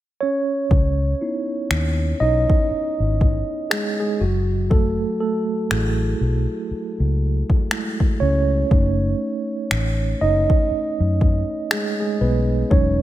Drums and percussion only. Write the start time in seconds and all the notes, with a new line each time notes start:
0.71 kick
1.71 finger snap
2.50 kick
3.21 kick
3.71 finger snap
4.71 kick
5.71 finger snap
7.50 kick
7.71 finger snap
8.00 kick
8.71 kick
9.71 finger snap
10.50 kick
11.21 kick
11.71 finger snap
12.71 kick